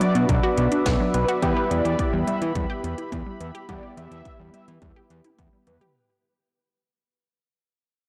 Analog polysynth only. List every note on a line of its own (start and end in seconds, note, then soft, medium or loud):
0.01 0.12 D5 medium
1.14 1.25 B4 medium
1.42 1.64 B4 loud
1.71 2.11 D5 medium
2.27 2.38 E5 medium
3.41 3.52 E5 medium
3.69 3.91 D5 loud
3.97 4.37 E5 medium
4.54 4.65 E5 medium
5.67 5.78 B4 medium